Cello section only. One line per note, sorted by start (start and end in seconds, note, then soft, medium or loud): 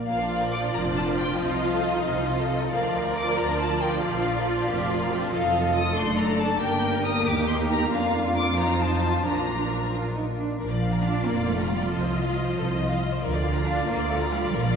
0.74 1.36 D4 soft
1.40 2.04 F4 medium
2.06 2.27 D#4 soft
2.28 2.50 F4 soft
2.50 2.71 A4 soft
2.72 4.03 A#4 medium
4.03 4.68 F4 medium
4.68 4.89 G4 medium
4.89 5.11 F4 medium
5.11 5.32 G4 medium
5.33 6.58 A4 medium
6.61 7.25 A#4 medium
7.26 7.91 G4 medium
7.91 9.22 F4 medium
9.25 9.87 D4 soft
9.92 10.13 F4 soft
10.15 10.23 D#4 soft
10.37 10.59 D4 soft
10.60 11.01 F3 medium
11.04 11.26 D4 medium
11.27 11.48 A#3 medium
11.48 11.70 A3 medium
11.70 11.92 G3 medium
11.92 12.99 F3 medium
13.22 13.63 F3 medium
13.66 13.87 D4 medium
13.88 14.09 A#3 medium
14.09 14.17 A3 medium
14.31 14.52 G3 medium
14.52 14.76 F3 medium